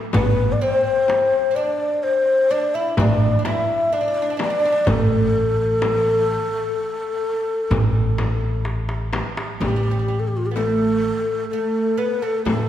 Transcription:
0.13 upright bass A1, oud B3, ney B4, frame drum, darbuka dum
0.52 ney D5
0.61 oud C4, ney C5
1.08 darbuka tek, frame drum
1.51 oud C4
1.55 oud D4, ney D5, darbuka ka
2.03 ney C5, darbuka ka
2.51 oud D4, ney D5
2.74 oud E4, ney E5
2.97 upright bass A1, oud D4, ney D5, darbuka dum, frame drum
3.39 oud D4
3.45 oud E4, ney E5, darbuka tek, frame drum
3.92 oud D4, ney D5
4.01 oud D4
4.08 oud D4
4.14 oud D4
4.22 oud D4
4.30 oud D4
4.37 oud D4, darbuka tek, frame drum
4.41 oud D4, ney D5
4.50 oud D4
4.59 oud D4
4.65 oud D4
4.72 oud D4
4.85 upright bass A1, oud A3, ney A4, darbuka dum, frame drum
5.34 darbuka ka
5.82 darbuka tek, frame drum
6.30 darbuka ka
7.71 upright bass A1, darbuka dum, frame drum
8.18 darbuka tek, frame drum
8.65 darbuka tek
8.89 darbuka ka
9.13 darbuka tek, frame drum
9.37 darbuka ka
9.60 upright bass A1, oud G3, ney G4, frame drum
9.68 oud G3
9.76 oud G3
9.83 oud G3
9.91 oud G3
9.99 oud G3
10.08 oud G3
10.20 ney A4
10.28 ney G4
10.37 ney F4
10.46 ney G4
10.51 oud B3, ney A4
10.56 oud A3, frame drum
11.50 oud A3, ney A4
11.97 oud B3, ney B4
12.22 oud A3, ney A4
12.45 upright bass A2, oud A3, ney A4, frame drum

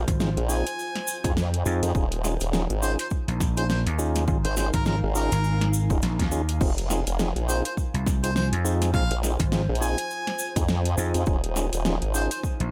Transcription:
Already playing: ambient pad F4 C5 G#5
0.08 slap bass G#1, kick, closed hi-hat, cabasa
0.20 tonewheel organ C4 D#4 F4 G#4, snare, cabasa
0.37 wobble bass A#1, closed hi-hat
0.49 tonewheel organ C4 D#4 F4 G#4, harmonica G#5, cabasa
0.67 closed hi-hat, cabasa
0.79 cabasa
0.96 snare, closed hi-hat
1.07 cabasa
1.24 wobble bass F2, tonewheel organ C4 D#4 F4 G#4, kick, closed hi-hat, cabasa
1.37 snare, cabasa
1.54 closed hi-hat
1.66 slap bass F2, tonewheel organ C4 D#4 F4 G#4, cabasa
1.83 wobble bass F2, closed hi-hat, cabasa
1.95 wobble bass D#1, tonewheel organ C#4 D#4 F4 G#4, ambient pad D#4, kick, cabasa
2.12 closed hi-hat
2.24 tonewheel organ C#4 D#4 F4 G#4, snare, cabasa
2.40 wobble bass D#1, closed hi-hat, cabasa
2.45 ambient pad A#4 F5
2.53 tonewheel organ C#4 D#4 F4 G#4, snare, cabasa
2.70 wobble bass G#1, closed hi-hat
2.82 tonewheel organ C#4 D#4 F4 G#4, harmonica C5, cabasa
2.99 harmonica C5, closed hi-hat, cabasa
3.10 kick, cabasa
3.28 slap bass A#1, closed hi-hat
3.40 kick, snare, cabasa
3.57 tonewheel organ C#4 D#4 F4 G#4, harmonica C5, closed hi-hat, cabasa
3.69 harmonica C5, snare, cabasa
3.86 slap bass D#2, closed hi-hat
3.99 tonewheel organ C#4 D#4 F4 G#4, cabasa
4.15 snare, closed hi-hat, cabasa
4.28 slap bass G#1, tonewheel organ C#4 D#4 F4 G#4, kick, cabasa
4.44 wobble bass G#1, harmonica C5, closed hi-hat
4.57 tonewheel organ C#4 D#4 F4 G#4, harmonica C5, snare, cabasa
4.73 slap bass G#1, harmonica A#4, kick, closed hi-hat, cabasa
4.86 tonewheel organ C#4 D#4 F4 G#4, harmonica A#4, snare, cabasa
5.03 wobble bass G#1
5.15 tonewheel organ C#4 D#4 F4 G#4, harmonica A#4, cabasa
5.32 slap bass G#1, closed hi-hat, cabasa
5.44 cabasa
5.61 snare, closed hi-hat
5.73 cabasa
5.90 wobble bass D#1, tonewheel organ C#4 D#4 F4 G#4, kick, cabasa
6.02 slap bass A#1, snare, closed hi-hat, cabasa
6.19 slap bass D#2, kick, snare, closed hi-hat
6.31 tonewheel organ C#4 D#4 F4 G#4, cabasa
6.49 closed hi-hat, cabasa
6.61 wobble bass F1, tonewheel organ C4 D#4 F4 G#4, ambient pad F4, kick, crash, cabasa
6.78 closed hi-hat
6.90 tonewheel organ C4 D#4 F4 G#4, snare, cabasa
7.07 wobble bass F1, closed hi-hat, cabasa
7.19 tonewheel organ C4 D#4 F4 G#4, snare, cabasa
7.36 wobble bass A#1, closed hi-hat
7.47 tonewheel organ C4 D#4 F4 G#4, ambient pad C5, harmonica C5, cabasa
7.65 harmonica C5, closed hi-hat, cabasa
7.77 kick, cabasa
7.94 slap bass C2, closed hi-hat
8.06 kick, snare, cabasa
8.23 tonewheel organ C4 D#4 F4 G#4, harmonica C5, closed hi-hat, cabasa
8.36 harmonica C5, snare, cabasa
8.52 slap bass F2, closed hi-hat
8.65 tonewheel organ C4 D#4 F4 G#4, cabasa
8.82 snare, closed hi-hat, cabasa
8.94 slap bass A#1, tonewheel organ C4 D#4 F4 G#4, harmonica F5, kick, cabasa
9.11 wobble bass A#1, closed hi-hat
9.23 tonewheel organ C4 D#4 F4 G#4, snare, cabasa
9.40 slap bass G#1, kick, closed hi-hat, cabasa
9.52 tonewheel organ C4 D#4 F4 G#4, snare, cabasa
9.69 wobble bass A#1
9.75 closed hi-hat
9.81 tonewheel organ C4 D#4 F4 G#4, harmonica G#5, cabasa
9.98 closed hi-hat, cabasa
10.11 cabasa
10.27 snare, closed hi-hat
10.39 cabasa
10.56 wobble bass F2, tonewheel organ C4 D#4 F4 G#4, kick, closed hi-hat, cabasa
10.68 snare, cabasa
10.85 closed hi-hat
10.98 slap bass F2, tonewheel organ C4 D#4 F4 G#4, cabasa
11.14 wobble bass F2, closed hi-hat, cabasa
11.26 wobble bass D#1, tonewheel organ C#4 D#4 F4 G#4, ambient pad D#4, kick, cabasa
11.44 closed hi-hat
11.56 tonewheel organ C#4 D#4 F4 G#4, snare, cabasa
11.73 wobble bass D#1, closed hi-hat, cabasa
11.79 ambient pad A#4
11.85 tonewheel organ C#4 D#4 F4 G#4, snare, cabasa
12.02 wobble bass G#1, closed hi-hat
12.14 tonewheel organ C#4 D#4 F4 G#4, harmonica C5, cabasa
12.31 harmonica C5, closed hi-hat, cabasa
12.43 kick, cabasa
12.60 slap bass A#1, closed hi-hat

